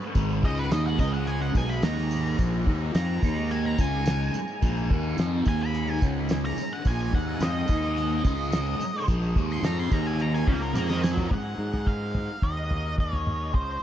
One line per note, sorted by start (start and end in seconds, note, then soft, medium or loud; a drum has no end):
0.00 2.12 G#2 medium
0.00 0.28 D#3 medium
0.00 0.89 G#3 medium
0.00 tambourine soft
0.15 0.41 G#1 loud
0.15 0.42 G#2 loud
0.15 0.43 D#3 medium
0.15 0.43 G#3 loud
0.15 kick loud
0.15 closed hi-hat medium
0.15 tambourine medium
0.28 2.75 D#3 medium
0.28 tambourine soft
0.43 0.69 C#2 medium
0.43 0.70 C#3 medium
0.43 0.71 G#3 medium
0.43 0.71 C#4 loud
0.43 0.58 D#5 loud
0.43 kick loud
0.58 0.72 B4 medium
0.58 tambourine soft
0.71 0.97 D#2 loud
0.71 0.98 D#3 medium
0.71 0.99 A#3 medium
0.71 0.99 D#4 medium
0.71 0.86 D#5 medium
0.71 snare loud
0.71 closed hi-hat medium
0.71 tambourine medium
0.86 1.52 G#3 medium
0.86 0.99 F#5 medium
0.99 1.51 C#2 medium
0.99 1.54 C#3 medium
0.99 1.54 G#3 loud
0.99 1.55 C#4 loud
0.99 1.13 D#5 loud
0.99 kick medium
0.99 tambourine medium
1.13 1.27 F#5 medium
1.13 tambourine soft
1.27 1.41 G#5 medium
1.27 closed hi-hat medium
1.27 tambourine soft
1.41 1.56 F#5 loud
1.41 tambourine soft
1.52 1.81 B1 medium
1.52 1.82 B2 medium
1.52 3.36 G#3 medium
1.52 kick loud
1.52 tambourine medium
1.56 1.83 F#3 loud
1.56 1.83 B3 loud
1.56 1.69 G#5 medium
1.70 1.83 B5 medium
1.70 tambourine soft
1.82 2.35 D#2 loud
1.82 2.38 D#3 medium
1.82 2.38 A#3 medium
1.82 2.39 D#4 medium
1.82 2.37 A#5 loud
1.82 snare loud
1.82 closed hi-hat medium
1.82 tambourine medium
1.98 snare soft
2.11 4.59 G#2 medium
2.11 tambourine medium
2.26 tambourine soft
2.39 2.65 A#1 loud
2.39 2.66 A#2 medium
2.39 2.66 F3 loud
2.39 2.66 A#3 loud
2.39 kick loud
2.39 closed hi-hat medium
2.39 tambourine medium
2.54 tambourine soft
2.67 2.93 D#2 loud
2.67 2.94 D#3 medium
2.67 2.94 A#3 medium
2.67 2.94 D#4 loud
2.67 kick loud
2.75 5.23 D#3 medium
2.94 3.21 F2 loud
2.94 3.22 F3 medium
2.94 3.22 C4 medium
2.94 3.22 F4 loud
2.94 3.49 A#5 loud
2.94 snare loud
2.94 closed hi-hat medium
2.94 tambourine medium
3.23 3.75 D#2 medium
3.23 3.78 D#3 medium
3.23 3.78 A#3 loud
3.23 3.78 D#4 loud
3.23 kick loud
3.23 tambourine medium
3.36 3.97 G#3 medium
3.36 tambourine soft
3.50 3.66 G#5 medium
3.50 closed hi-hat medium
3.50 tambourine soft
3.66 3.81 A#5 medium
3.78 4.30 C#2 loud
3.78 4.33 C#3 loud
3.78 4.34 G#3 loud
3.78 4.34 C#4 loud
3.78 4.34 G#5 loud
3.78 kick loud
3.78 tambourine medium
3.97 5.85 G#3 medium
4.06 snare loud
4.06 closed hi-hat medium
4.06 tambourine medium
4.34 muted fingered electric bass stroke soft
4.34 muted distorted electric guitar stroke medium
4.34 tambourine medium
4.48 tambourine soft
4.60 4.88 A#1 loud
4.60 7.07 G#2 medium
4.60 4.89 A#2 loud
4.60 4.89 F3 medium
4.60 4.90 A#3 loud
4.60 kick loud
4.60 closed hi-hat medium
4.60 tambourine medium
4.77 tambourine soft
4.90 5.16 D#2 loud
4.90 5.17 D#3 medium
4.90 5.17 A#3 medium
4.90 5.18 D#4 medium
4.90 kick loud
5.17 5.44 F2 loud
5.17 5.46 F3 medium
5.17 5.47 C4 loud
5.17 5.47 F4 medium
5.17 snare loud
5.17 closed hi-hat medium
5.17 tambourine medium
5.23 7.69 D#3 medium
5.45 5.98 D#2 medium
5.45 6.01 D#3 medium
5.45 6.01 A#3 loud
5.45 6.01 D#4 loud
5.45 5.61 G#5 medium
5.45 kick loud
5.45 tambourine medium
5.60 5.92 B5 medium
5.60 tambourine soft
5.74 closed hi-hat medium
5.74 tambourine soft
5.85 6.46 G#3 medium
5.92 6.02 G#5 medium
6.02 6.54 C#2 medium
6.02 6.57 C#3 loud
6.02 6.57 G#3 loud
6.02 6.57 C#4 loud
6.02 kick loud
6.02 tambourine medium
6.29 snare loud
6.29 closed hi-hat medium
6.29 tambourine medium
6.45 8.30 G#3 medium
6.45 6.71 A#5 medium
6.57 muted fingered electric bass stroke soft
6.57 muted distorted electric guitar stroke medium
6.57 tambourine medium
6.71 6.86 F#5 loud
6.71 tambourine soft
6.85 7.11 A#1 loud
6.85 7.12 A#2 medium
6.85 7.12 F3 medium
6.85 7.12 A#3 loud
6.85 7.13 G#5 loud
6.85 kick loud
6.85 closed hi-hat medium
6.85 tambourine medium
6.99 tambourine soft
7.07 9.54 G#2 medium
7.13 7.39 D#2 loud
7.13 7.40 D#3 medium
7.13 7.40 A#3 medium
7.13 7.41 D#4 loud
7.13 7.41 F#5 medium
7.13 kick loud
7.40 7.67 F2 loud
7.40 7.68 F3 medium
7.40 7.68 C4 medium
7.40 7.69 F4 loud
7.40 9.05 D#5 loud
7.40 snare loud
7.40 closed hi-hat medium
7.40 tambourine medium
7.68 8.21 D#2 loud
7.68 8.23 D#3 loud
7.68 10.15 D#3 medium
7.68 8.24 A#3 loud
7.68 8.24 D#4 loud
7.68 kick loud
7.68 tambourine medium
7.82 tambourine soft
7.96 closed hi-hat medium
7.96 tambourine soft
8.23 8.76 C#2 loud
8.23 8.79 C#3 loud
8.23 8.79 G#3 loud
8.23 8.79 C#4 loud
8.23 kick loud
8.23 tambourine medium
8.30 8.93 G#3 medium
8.52 snare loud
8.52 closed hi-hat medium
8.52 tambourine medium
8.79 muted fingered electric bass stroke soft
8.79 muted distorted electric guitar stroke medium
8.79 tambourine medium
8.93 10.77 G#3 medium
8.93 tambourine soft
9.08 9.34 A#1 loud
9.08 9.35 A#2 medium
9.08 9.35 F3 loud
9.08 9.35 A#3 loud
9.08 kick loud
9.08 closed hi-hat medium
9.08 tambourine medium
9.22 tambourine soft
9.36 9.62 D#2 medium
9.36 9.63 D#3 medium
9.36 9.63 A#3 loud
9.36 9.63 D#4 medium
9.36 kick loud
9.36 tambourine soft
9.50 13.83 G#2 medium
9.50 9.64 C6 medium
9.50 tambourine soft
9.62 9.89 F2 loud
9.62 9.91 F3 medium
9.62 9.91 C4 loud
9.62 9.91 F4 loud
9.62 9.78 A#5 loud
9.62 snare loud
9.62 closed hi-hat medium
9.62 tambourine loud
9.78 9.93 C6 medium
9.78 tambourine soft
9.91 10.43 D#2 loud
9.91 10.46 D#3 medium
9.91 10.46 A#3 loud
9.91 10.47 D#4 loud
9.91 10.06 A#5 medium
9.91 kick loud
9.91 tambourine medium
10.06 10.21 G#5 medium
10.06 tambourine soft
10.15 13.83 D#3 medium
10.15 tambourine soft
10.20 10.34 A#5 medium
10.20 closed hi-hat medium
10.34 10.47 G#5 loud
10.34 tambourine soft
10.47 10.73 C#2 loud
10.47 10.74 C#3 loud
10.47 10.74 G#3 loud
10.47 10.74 C#4 loud
10.47 11.33 A#4 medium
10.47 10.62 F5 loud
10.47 kick loud
10.62 10.75 G#5 medium
10.62 tambourine soft
10.74 11.27 F2 loud
10.74 11.29 F3 medium
10.74 13.83 G#3 medium
10.74 11.30 C4 medium
10.74 11.30 F4 medium
10.74 10.89 F5 medium
10.74 high tom medium
10.74 tambourine medium
10.90 11.03 D#5 medium
10.90 snare medium
10.90 tambourine soft
11.03 11.30 G#5 loud
11.03 snare medium
11.03 tambourine medium
11.17 floor tom loud
11.17 tambourine soft
11.31 11.54 G#2 loud
11.31 11.87 F#5 medium
11.31 kick loud
11.31 floor tom medium
11.58 12.28 G#2 medium
11.73 floor tom medium
11.87 12.44 F5 medium
11.87 kick loud
12.15 floor tom medium
12.15 mid tom medium
12.42 13.54 D#2 medium
12.42 12.95 D#5 medium
12.42 kick medium
12.71 floor tom medium
12.98 13.54 C#5 medium
12.98 kick loud
13.13 floor tom medium
13.27 mid tom medium
13.54 13.77 C#2 loud
13.54 13.83 C5 medium
13.54 kick loud
13.54 floor tom medium